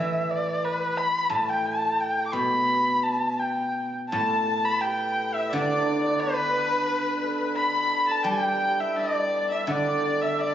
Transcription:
Already playing: A2 E3 E5
0.31 D5
0.64 B4
0.97 B5
1.30 A2 A5
1.49 G5
1.66 A5
2.00 G5
2.26 D6
2.33 B2 B5
3.04 A5
3.39 G5
4.10 A2 A4 A5
4.19 A4
4.26 A4
4.33 A4
4.40 A4
4.47 A4
4.64 B4 B5
4.81 G4 G5
5.34 E4 E5
5.52 D3 D4 D5
5.61 D4
5.68 D4
5.77 D4
5.83 D4
5.91 D4
5.98 D4
6.04 D4 D5
6.19 B3 B4
7.17 B4
7.23 A4
7.56 B4 B5
8.07 A4 A5
8.24 G3 G4 G5
8.32 G4
8.41 G4
8.48 G4
8.58 G4
8.65 G4
8.80 E4 E5
8.96 D4 D5
9.49 E4 E5
9.67 D3 D4 D5
9.71 D5
10.21 E4 E5
10.38 D4 D5

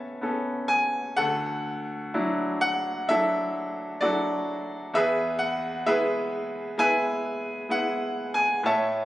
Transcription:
Already playing: A2 B3 C#4 A4 B4 C#5 E5 A5
0.21 B3 C#4 A4
0.68 G#5
1.17 D2 A4 F#5
2.14 F#3 D4 E4
2.61 F#5
3.09 F#3 D4 E4 A4 E5
4.01 F#3 D4 E4 F#4 A4 D5
4.94 E2 G#4 B4 E5
5.39 F#5
5.86 G#3 B3 E4 G#4 B4 E5
6.78 G#3 B3 E4 B4 E5 G#5
7.69 G#3 B3 E4 F#5
8.34 G#5
8.63 A2 C#5 E5 A5

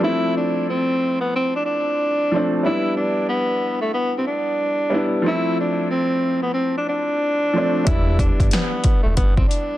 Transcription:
0.00 F3 A3 C4 E4
0.04 E4
0.37 D4
0.69 C4
1.21 B3
1.35 C4
1.56 D4
1.66 D4
2.31 F3 A3 C4
2.36 D4
2.63 G3 B3 D4 E4
2.67 E4
2.97 D4
3.29 B3
3.81 A3
3.94 B3
4.18 C4
4.27 D4
4.90 G3 B3 D4
4.94 E4
5.22 F3 A3 C4
5.26 E4
5.60 D4
5.91 C4
6.42 B3
6.54 C4
6.77 D4
6.89 D4
7.53 F3 A3 C4
7.58 D4
7.85 E1 G3 B3 D4 E4, kick, closed hi-hat
7.89 E4
8.19 D4, kick, closed hi-hat
8.40 G1, kick, closed hi-hat
8.51 B3, snare, closed hi-hat
8.84 kick, closed hi-hat
9.03 E1 A3
9.17 G1 B3, kick, closed hi-hat
9.37 C4, kick
9.48 D4, closed hi-hat

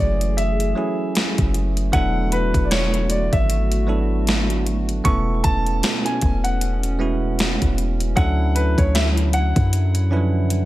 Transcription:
Already playing: E3 F#3 A3 C#4 E4 G#4
0.00 F#1 D5
0.21 closed hi-hat
0.37 E5, closed hi-hat
0.60 closed hi-hat
0.75 F#3 A3 C#4 E4 G#4
1.15 snare, closed hi-hat
1.38 F#1, kick, closed hi-hat
1.54 closed hi-hat
1.77 closed hi-hat
1.92 E1 D3 F#3 B3 D4 E4 F#4 A4 F#5, kick, closed hi-hat
2.32 B4, closed hi-hat
2.54 E1, kick, closed hi-hat
2.65 D5
2.71 C#5, snare, closed hi-hat
2.94 closed hi-hat
3.10 D5, closed hi-hat
3.33 G#1 E5, kick, closed hi-hat
3.50 closed hi-hat
3.72 closed hi-hat
3.87 F#3 B3 D4 E4 A4
4.27 snare, closed hi-hat
4.50 closed hi-hat
4.66 closed hi-hat
4.89 closed hi-hat
5.04 E1 B2 A3 B3 C#4 E4 A4 C#6, kick, closed hi-hat
5.44 E1 A5, kick, closed hi-hat
5.67 closed hi-hat
5.83 snare, closed hi-hat
6.05 G#5, closed hi-hat
6.21 E1, kick, closed hi-hat
6.44 F#5, closed hi-hat
6.61 closed hi-hat
6.83 closed hi-hat
6.99 G#3 B3 C#4 E4 F#4
7.39 snare, closed hi-hat
7.62 E1, kick, closed hi-hat
7.78 closed hi-hat
8.00 closed hi-hat
8.16 D2 D3 F#3 C#4 D4 E4 A4 F#5, kick, closed hi-hat
8.55 B4, closed hi-hat
8.78 D2 C#5, kick, closed hi-hat
8.95 E5, snare, closed hi-hat
9.17 closed hi-hat
9.33 F#5, closed hi-hat
9.56 F#2, kick, closed hi-hat
9.73 closed hi-hat
9.95 closed hi-hat
10.10 F3 C#4 D4 E4 B4
10.17 F#3
10.50 closed hi-hat

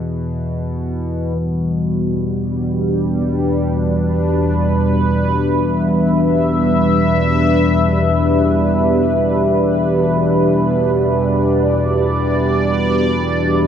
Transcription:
Already playing: E2 B2
1.38 E2 B2 G3
2.41 D4
3.04 B4
5.42 E5
10.93 D5

